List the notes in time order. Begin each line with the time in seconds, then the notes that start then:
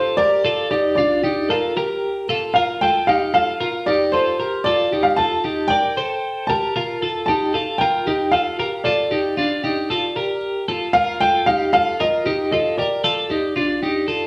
Already playing: F4 A4 C5
0.17 G4 A#4 D5
0.45 F4 A4
0.71 D#4 G4 D5
0.95 D4 F4 D5
1.24 D#4 G4
1.49 F4 A4 A#4
1.77 G4 A#4
2.29 F4 A4
2.54 F4 A#4 F5
2.81 F4 A4 G5
3.07 D#4 G4 F5
3.34 F4 A4 F5
3.60 F4 A#4
3.86 D#4 G4 D5
4.12 F4 A4 C5
4.40 G4 A#4
4.64 F4 A4 D5
4.92 D#4 G4
5.03 F5
5.16 F4 A4 A5
5.44 D#4 G4
5.68 A#4 D5 G5
5.97 A4 C5
6.47 G4 A#4 A5
6.76 F4 A#4
7.02 F4 A4
7.26 D#4 G4 A5
7.54 F4 A4
7.78 F4 A#4 G5
8.07 D#4 G4
8.32 F4 A4 F5
8.59 G4 A#4
8.84 F4 A4 D5
9.11 D#4 G4
9.37 D4 F4
9.64 D#4 G4
9.90 F4 A4
10.16 G4 A#4
10.68 F4 A4
10.93 F4 A#4 F5
11.20 F4 A4 G5
11.46 D#4 G4 F5
11.73 F4 A4 F5
12.00 F4 A#4 D#5
12.26 D#4 G4
12.52 F4 A4 D#5
12.78 G4 A#4 D5
13.04 F4 A4
13.30 D#4 G4
13.56 D4 F4
13.83 D#4 G4
14.08 F4 A4